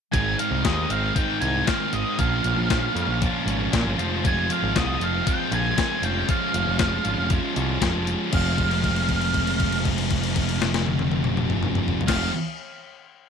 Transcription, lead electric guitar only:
0, 0, Header, 1, 2, 480
1, 0, Start_track
1, 0, Key_signature, -4, "minor"
1, 0, Tempo, 512821
1, 125, Time_signature, 4, 2, 24, 8
1, 5885, Tempo, 507614
1, 12507, End_track
2, 0, Start_track
2, 0, Title_t, "Lead electric guitar"
2, 0, Program_c, 0, 29
2, 112, Note_on_c, 0, 80, 104
2, 341, Note_off_c, 0, 80, 0
2, 360, Note_on_c, 0, 77, 91
2, 586, Note_off_c, 0, 77, 0
2, 601, Note_on_c, 0, 75, 76
2, 846, Note_on_c, 0, 77, 88
2, 851, Note_off_c, 0, 75, 0
2, 1078, Note_off_c, 0, 77, 0
2, 1082, Note_on_c, 0, 79, 88
2, 1313, Note_off_c, 0, 79, 0
2, 1317, Note_on_c, 0, 80, 100
2, 1561, Note_off_c, 0, 80, 0
2, 1565, Note_on_c, 0, 77, 90
2, 1809, Note_on_c, 0, 75, 85
2, 1813, Note_off_c, 0, 77, 0
2, 2032, Note_off_c, 0, 75, 0
2, 2046, Note_on_c, 0, 77, 79
2, 2970, Note_off_c, 0, 77, 0
2, 3995, Note_on_c, 0, 80, 102
2, 4224, Note_off_c, 0, 80, 0
2, 4228, Note_on_c, 0, 77, 94
2, 4465, Note_on_c, 0, 75, 86
2, 4466, Note_off_c, 0, 77, 0
2, 4704, Note_off_c, 0, 75, 0
2, 4713, Note_on_c, 0, 77, 94
2, 4935, Note_off_c, 0, 77, 0
2, 4939, Note_on_c, 0, 79, 90
2, 5180, Note_off_c, 0, 79, 0
2, 5186, Note_on_c, 0, 80, 98
2, 5412, Note_off_c, 0, 80, 0
2, 5423, Note_on_c, 0, 80, 97
2, 5652, Note_off_c, 0, 80, 0
2, 5656, Note_on_c, 0, 79, 94
2, 5888, Note_off_c, 0, 79, 0
2, 5891, Note_on_c, 0, 77, 89
2, 6816, Note_off_c, 0, 77, 0
2, 7824, Note_on_c, 0, 77, 91
2, 11271, Note_off_c, 0, 77, 0
2, 11356, Note_on_c, 0, 77, 77
2, 11559, Note_off_c, 0, 77, 0
2, 12507, End_track
0, 0, End_of_file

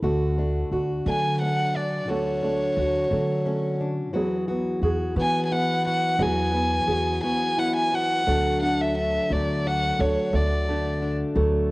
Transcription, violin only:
0, 0, Header, 1, 2, 480
1, 0, Start_track
1, 0, Tempo, 687285
1, 22, Time_signature, 6, 3, 24, 8
1, 8181, End_track
2, 0, Start_track
2, 0, Title_t, "Violin"
2, 0, Program_c, 0, 40
2, 758, Note_on_c, 0, 80, 72
2, 975, Note_off_c, 0, 80, 0
2, 993, Note_on_c, 0, 78, 82
2, 1234, Note_on_c, 0, 74, 66
2, 1244, Note_off_c, 0, 78, 0
2, 1467, Note_on_c, 0, 73, 72
2, 1478, Note_off_c, 0, 74, 0
2, 2660, Note_off_c, 0, 73, 0
2, 3645, Note_on_c, 0, 80, 88
2, 3804, Note_off_c, 0, 80, 0
2, 3809, Note_on_c, 0, 80, 63
2, 3860, Note_on_c, 0, 78, 83
2, 3870, Note_off_c, 0, 80, 0
2, 4095, Note_off_c, 0, 78, 0
2, 4108, Note_on_c, 0, 78, 82
2, 4347, Note_on_c, 0, 80, 85
2, 4357, Note_off_c, 0, 78, 0
2, 5053, Note_off_c, 0, 80, 0
2, 5057, Note_on_c, 0, 80, 89
2, 5302, Note_on_c, 0, 78, 86
2, 5313, Note_off_c, 0, 80, 0
2, 5417, Note_off_c, 0, 78, 0
2, 5422, Note_on_c, 0, 80, 80
2, 5552, Note_on_c, 0, 78, 91
2, 5563, Note_off_c, 0, 80, 0
2, 6023, Note_off_c, 0, 78, 0
2, 6027, Note_on_c, 0, 78, 71
2, 6154, Note_on_c, 0, 76, 68
2, 6164, Note_off_c, 0, 78, 0
2, 6266, Note_off_c, 0, 76, 0
2, 6272, Note_on_c, 0, 76, 67
2, 6515, Note_on_c, 0, 74, 70
2, 6526, Note_off_c, 0, 76, 0
2, 6754, Note_on_c, 0, 78, 81
2, 6764, Note_off_c, 0, 74, 0
2, 6989, Note_on_c, 0, 73, 72
2, 6999, Note_off_c, 0, 78, 0
2, 7229, Note_on_c, 0, 74, 72
2, 7239, Note_off_c, 0, 73, 0
2, 7763, Note_off_c, 0, 74, 0
2, 8181, End_track
0, 0, End_of_file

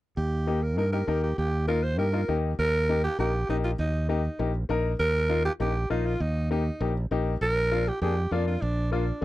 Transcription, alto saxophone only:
0, 0, Header, 1, 2, 480
1, 0, Start_track
1, 0, Key_signature, -3, "major"
1, 0, Tempo, 301659
1, 274, Time_signature, 4, 2, 24, 8
1, 14717, End_track
2, 0, Start_track
2, 0, Title_t, "Alto saxophone"
2, 0, Program_c, 0, 65
2, 274, Note_on_c, 0, 67, 78
2, 995, Note_on_c, 0, 70, 77
2, 1019, Note_off_c, 0, 67, 0
2, 1231, Note_off_c, 0, 70, 0
2, 1241, Note_on_c, 0, 70, 81
2, 1462, Note_off_c, 0, 70, 0
2, 1471, Note_on_c, 0, 70, 79
2, 1722, Note_on_c, 0, 67, 73
2, 1746, Note_off_c, 0, 70, 0
2, 1953, Note_off_c, 0, 67, 0
2, 1962, Note_on_c, 0, 67, 76
2, 2183, Note_off_c, 0, 67, 0
2, 2202, Note_on_c, 0, 67, 87
2, 2647, Note_off_c, 0, 67, 0
2, 2671, Note_on_c, 0, 70, 86
2, 2920, Note_on_c, 0, 72, 88
2, 2944, Note_off_c, 0, 70, 0
2, 3153, Note_off_c, 0, 72, 0
2, 3163, Note_on_c, 0, 70, 85
2, 3831, Note_off_c, 0, 70, 0
2, 4123, Note_on_c, 0, 70, 102
2, 4791, Note_off_c, 0, 70, 0
2, 4840, Note_on_c, 0, 67, 89
2, 5063, Note_off_c, 0, 67, 0
2, 5089, Note_on_c, 0, 67, 90
2, 5531, Note_off_c, 0, 67, 0
2, 5568, Note_on_c, 0, 63, 74
2, 5674, Note_off_c, 0, 63, 0
2, 5795, Note_on_c, 0, 65, 76
2, 5904, Note_off_c, 0, 65, 0
2, 6036, Note_on_c, 0, 63, 89
2, 6484, Note_off_c, 0, 63, 0
2, 6518, Note_on_c, 0, 63, 65
2, 7188, Note_off_c, 0, 63, 0
2, 7951, Note_on_c, 0, 70, 109
2, 8624, Note_off_c, 0, 70, 0
2, 8675, Note_on_c, 0, 67, 88
2, 8784, Note_off_c, 0, 67, 0
2, 8925, Note_on_c, 0, 67, 91
2, 9368, Note_off_c, 0, 67, 0
2, 9399, Note_on_c, 0, 63, 74
2, 9644, Note_on_c, 0, 65, 84
2, 9668, Note_off_c, 0, 63, 0
2, 9882, Note_on_c, 0, 63, 84
2, 9906, Note_off_c, 0, 65, 0
2, 10355, Note_off_c, 0, 63, 0
2, 10365, Note_on_c, 0, 63, 66
2, 11030, Note_off_c, 0, 63, 0
2, 11806, Note_on_c, 0, 70, 107
2, 12539, Note_on_c, 0, 67, 90
2, 12563, Note_off_c, 0, 70, 0
2, 12750, Note_off_c, 0, 67, 0
2, 12759, Note_on_c, 0, 67, 91
2, 13239, Note_on_c, 0, 62, 77
2, 13263, Note_off_c, 0, 67, 0
2, 13476, Note_off_c, 0, 62, 0
2, 13486, Note_on_c, 0, 65, 79
2, 13712, Note_on_c, 0, 62, 89
2, 13736, Note_off_c, 0, 65, 0
2, 14192, Note_off_c, 0, 62, 0
2, 14202, Note_on_c, 0, 62, 69
2, 14717, Note_off_c, 0, 62, 0
2, 14717, End_track
0, 0, End_of_file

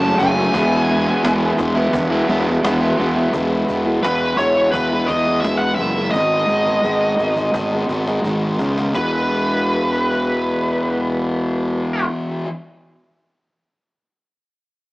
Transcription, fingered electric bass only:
0, 0, Header, 1, 2, 480
1, 0, Start_track
1, 0, Key_signature, 4, "major"
1, 0, Tempo, 698487
1, 375, Time_signature, 4, 2, 24, 8
1, 4216, Tempo, 704225
1, 10204, End_track
2, 0, Start_track
2, 0, Title_t, "Fingered electric bass"
2, 0, Program_c, 0, 33
2, 0, Note_on_c, 0, 30, 104
2, 84, Note_off_c, 0, 30, 0
2, 134, Note_on_c, 0, 30, 95
2, 320, Note_off_c, 0, 30, 0
2, 371, Note_on_c, 0, 28, 108
2, 743, Note_off_c, 0, 28, 0
2, 852, Note_on_c, 0, 28, 94
2, 1038, Note_off_c, 0, 28, 0
2, 1088, Note_on_c, 0, 28, 88
2, 1275, Note_off_c, 0, 28, 0
2, 1329, Note_on_c, 0, 28, 80
2, 1516, Note_off_c, 0, 28, 0
2, 1573, Note_on_c, 0, 28, 101
2, 1758, Note_off_c, 0, 28, 0
2, 1817, Note_on_c, 0, 28, 98
2, 2000, Note_off_c, 0, 28, 0
2, 2057, Note_on_c, 0, 28, 89
2, 2241, Note_off_c, 0, 28, 0
2, 2292, Note_on_c, 0, 28, 86
2, 2516, Note_off_c, 0, 28, 0
2, 2532, Note_on_c, 0, 28, 81
2, 2755, Note_off_c, 0, 28, 0
2, 2777, Note_on_c, 0, 28, 80
2, 2999, Note_off_c, 0, 28, 0
2, 3011, Note_on_c, 0, 28, 76
2, 3236, Note_off_c, 0, 28, 0
2, 3252, Note_on_c, 0, 28, 69
2, 3477, Note_off_c, 0, 28, 0
2, 3494, Note_on_c, 0, 40, 75
2, 3718, Note_off_c, 0, 40, 0
2, 3744, Note_on_c, 0, 28, 84
2, 3964, Note_off_c, 0, 28, 0
2, 3983, Note_on_c, 0, 30, 73
2, 4204, Note_off_c, 0, 30, 0
2, 4216, Note_on_c, 0, 32, 96
2, 4439, Note_off_c, 0, 32, 0
2, 4457, Note_on_c, 0, 32, 74
2, 4679, Note_off_c, 0, 32, 0
2, 4697, Note_on_c, 0, 32, 77
2, 4919, Note_off_c, 0, 32, 0
2, 4934, Note_on_c, 0, 32, 69
2, 5157, Note_off_c, 0, 32, 0
2, 5174, Note_on_c, 0, 32, 64
2, 5398, Note_off_c, 0, 32, 0
2, 5411, Note_on_c, 0, 32, 69
2, 5636, Note_off_c, 0, 32, 0
2, 5651, Note_on_c, 0, 32, 80
2, 5876, Note_off_c, 0, 32, 0
2, 5890, Note_on_c, 0, 37, 69
2, 6115, Note_off_c, 0, 37, 0
2, 6129, Note_on_c, 0, 28, 76
2, 8242, Note_off_c, 0, 28, 0
2, 10204, End_track
0, 0, End_of_file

